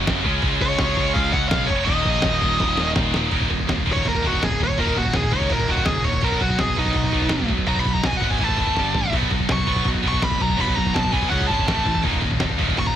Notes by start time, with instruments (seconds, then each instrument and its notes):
Already playing: distorted electric guitar F#2 C#3 F#3 A#3 C#4 F#4
0.07 picked electric bass F#1, kick, snare, crash
0.23 picked electric bass C#2, distorted electric guitar C#3 G#3 C#4 F4 G#4, kick
0.42 picked electric bass C#2, kick, crash
0.60 picked electric bass C#2, lead electric guitar C#5, kick
0.78 picked electric bass C#2, distorted electric guitar C#3 G#3 C#4 F4 G#4, kick, snare, crash
0.96 picked electric bass C#2, kick
1.14 picked electric bass C#2, lead electric guitar F5, kick, crash
1.33 picked electric bass C#2, lead electric guitar F#5, kick
1.48 picked electric bass B1, lead electric guitar F5, kick, snare, crash
1.67 picked electric bass F1, lead electric guitar C#5, kick
1.85 picked electric bass D#1, distorted electric guitar D#2 A#2 F#3, lead electric guitar D#5, kick, crash
1.89 distorted electric guitar D#3 A#3 D#4
2.05 picked electric bass A#1, kick
2.22 picked electric bass D#1, kick, snare, crash
2.40 picked electric bass D#1, distorted electric guitar A#2 D#3 F#3 A#3 D#4, kick
2.44 distorted electric guitar D#2
2.60 picked electric bass D#1, kick, snare
2.77 snare
2.96 picked electric bass D#1, kick, snare
3.14 picked electric bass D#1, snare
3.31 picked electric bass D#1, distorted electric guitar D#2 A#2 D#3 F#3 A#3 D#4, kick, crash
3.41 kick
3.49 picked electric bass D#1, distorted electric guitar D#2 A#2, kick, crash
3.60 kick
3.67 picked electric bass D#1, distorted electric guitar D#2 A#2, kick, snare, crash
3.78 kick
3.86 distorted electric guitar D#2 A#2 D#3, kick, crash
3.92 lead electric guitar C#5, kick
4.05 picked electric bass D#1, distorted electric guitar D#2 A#2 D#3 F#3 A#3 D#4, kick, crash
4.09 lead electric guitar A#4
4.14 kick
4.24 distorted electric guitar D#2 A#2 D#3, lead electric guitar F#4, kick, crash
4.33 kick
4.42 picked electric bass D#1, distorted electric guitar D#2 A#2, lead electric guitar G#4, kick, snare, crash
4.51 kick
4.60 picked electric bass D#1, distorted electric guitar D#2 A#2, lead electric guitar C#5, kick, crash
4.69 kick
4.78 picked electric bass D#1, distorted electric guitar D#2 A#2 D#3 F#3 A#3 D#4, lead electric guitar A#4, kick, crash
4.87 kick
4.96 picked electric bass D#1, distorted electric guitar D#2 A#2, lead electric guitar F#4, kick, crash
5.05 kick
5.13 picked electric bass D#1, distorted electric guitar D#2 A#2, lead electric guitar G#4, kick, snare, crash
5.23 kick
5.31 picked electric bass C#2, distorted electric guitar D#2 A#2 D#3, lead electric guitar C#5, kick, crash
5.41 kick
5.49 picked electric bass D#1, distorted electric guitar D#2 A#2 D#3 F#3, lead electric guitar A#4, kick, crash
5.54 distorted electric guitar A#3 D#4
5.59 kick
5.68 picked electric bass D#1, distorted electric guitar D#2 A#2 D#3, lead electric guitar F#4, kick, crash
5.77 kick
5.85 picked electric bass C#2, distorted electric guitar D#2 A#2, lead electric guitar G#4, kick, snare, crash
5.95 kick
6.04 picked electric bass D#1, distorted electric guitar D#2 A#2, lead electric guitar C#5, kick, crash
6.13 kick
6.21 picked electric bass B1, distorted electric guitar B2 D#4, lead electric guitar A#4, kick, crash
6.25 distorted electric guitar F#3 B3 F#4
6.32 kick
6.40 picked electric bass B1, distorted electric guitar B2 F#3, lead electric guitar F#4, kick, crash
6.50 kick
6.59 picked electric bass B1, distorted electric guitar B2 F#3, lead electric guitar G#4, kick, snare, crash
6.68 kick
6.75 distorted electric guitar B2 F#3, lead electric guitar D#4, kick, crash
6.80 distorted electric guitar B3
6.85 kick
6.93 picked electric bass B1, distorted electric guitar B2 F#3 B3, kick, crash
6.97 distorted electric guitar D#4 F#4
7.03 kick
7.12 distorted electric guitar B2 F#3 B3, kick, crash
7.21 kick
7.29 picked electric bass B1, distorted electric guitar B2 F#3, kick, snare, crash
7.40 kick
7.49 picked electric bass B1, distorted electric guitar B2 F#3, kick, crash
7.58 kick
7.66 picked electric bass B1, distorted electric guitar B2 F#3 B3 D#4 F#4, lead electric guitar A#5, kick, crash
7.76 lead electric guitar B5, kick
7.85 picked electric bass B1, distorted electric guitar B2 F#3, kick, crash
7.93 lead electric guitar A#5, kick
8.03 picked electric bass B1, distorted electric guitar B2 F#3, lead electric guitar G#5, kick, snare, crash
8.12 kick
8.17 distorted electric guitar B2 F#3 B3, lead electric guitar F#5, crash
8.21 picked electric bass G#1, kick
8.30 lead electric guitar G#5, kick
8.39 picked electric bass A1, distorted electric guitar A2 E3 A3, kick, crash
8.44 lead electric guitar A5
8.48 kick
8.57 picked electric bass F#1, distorted electric guitar A2 E3 A3, kick, crash
8.67 kick
8.76 picked electric bass G1, distorted electric guitar G2 D3 G3, kick, snare
8.94 picked electric bass A1, distorted electric guitar G2 D3, floor tom
9.12 picked electric bass B1, distorted electric guitar B2 F#3 B3 D#4, kick, crash
9.16 distorted electric guitar F#4
9.22 kick
9.31 picked electric bass B1, distorted electric guitar B2 F#3, kick, crash
9.40 kick
9.49 picked electric bass B1, distorted electric guitar B2 F#3, lead electric guitar C#6, kick, snare, crash
9.58 kick
9.66 distorted electric guitar B2 F#3 B3, kick, crash
9.76 kick
9.85 picked electric bass B1, distorted electric guitar B2 F#3 B3 D#4, kick, crash
9.89 distorted electric guitar F#4
9.94 kick
10.03 distorted electric guitar B2 F#3 B3, kick, crash
10.08 lead electric guitar C#6
10.13 kick
10.22 picked electric bass B1, distorted electric guitar B2 F#3, lead electric guitar B5, kick, snare, crash
10.31 kick
10.40 picked electric bass B1, distorted electric guitar B2 F#3, lead electric guitar A#5, kick, crash
10.49 kick
10.57 picked electric bass B1, distorted electric guitar B2 F#3 B3 D#4, lead electric guitar B5, kick, crash
10.61 distorted electric guitar F#4
10.67 kick
10.76 picked electric bass B1, distorted electric guitar B2 F#3, lead electric guitar A#5, kick, crash
10.86 kick
10.93 picked electric bass B1, distorted electric guitar B2 F#3, lead electric guitar A5, kick, snare, crash
11.04 kick
11.12 picked electric bass B1, distorted electric guitar B2 F#3 B3, lead electric guitar G#5, kick, crash
11.22 kick
11.29 picked electric bass C#2, distorted electric guitar C#3 G#3 C#4, lead electric guitar F#5, kick, crash
11.40 kick
11.47 picked electric bass G#1, distorted electric guitar C#3 G#3, lead electric guitar A5, kick, crash
11.51 distorted electric guitar C#4
11.59 kick
11.67 picked electric bass A1, distorted electric guitar A2 E3 A3, kick, snare, crash
11.77 kick
11.85 picked electric bass A1, distorted electric guitar A2 E3, kick, crash
11.95 kick
12.04 picked electric bass D#1, distorted electric guitar D#2 A#2 D#3 F#3 A#3 D#4, kick, crash
12.13 kick
12.21 picked electric bass D#1, distorted electric guitar D#2 A#2, kick, crash
12.31 kick
12.40 picked electric bass D#1, distorted electric guitar D#2 A#2, kick, snare, crash
12.50 kick
12.58 distorted electric guitar D#2 A#2 D#3, kick, crash
12.68 kick
12.76 picked electric bass D#1, distorted electric guitar D#2 A#2 D#3 F#3 A#3 D#4, lead electric guitar C#6, kick, crash
12.86 lead electric guitar A#5, kick